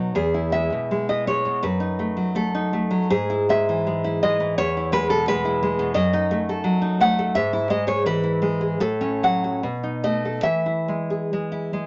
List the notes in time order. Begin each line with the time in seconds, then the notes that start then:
Already playing: B2 F#3 D#4
0.15 E2 G#4
0.34 E4
0.52 G#3 E5
0.72 B2
0.91 G#3
1.09 E4 D#5
1.27 G#3 C#5
1.45 B2
1.63 F#2 B4
1.80 D#4
1.99 A3
2.17 F#3
2.35 A3 A4
2.55 D#4
2.73 A3
2.91 F#3
3.10 G#2 G#4
3.30 E4
3.49 G#3 E5
3.69 E3
3.87 G#3
4.04 E4
4.23 G#3 D#5
4.40 E3
4.58 E2 C#5
4.77 E4
4.92 G#3 B4
5.09 B2 A4
5.28 G#3 B4
5.45 E4
5.63 G#3
5.79 B2
5.94 F#2 D#5
6.13 D#4
6.31 A3
6.49 A4
6.64 F#3
6.82 D#4
7.00 A3 F#5
7.19 A4
7.35 G#2 E5
7.53 E4
7.70 G#3 D#5
7.87 G#4 C#5
8.06 E3 B4
8.23 E4
8.42 G#3
8.61 G#4
8.80 A2 A4
9.01 C#4
9.23 F#3 F#5
9.44 F#4
9.63 B2
9.83 D#4
10.04 A3 D#5
10.25 A4
10.43 E3 E5
10.66 E4
10.88 G#3
11.10 G#4
11.33 G#3
11.52 E4
11.73 G#3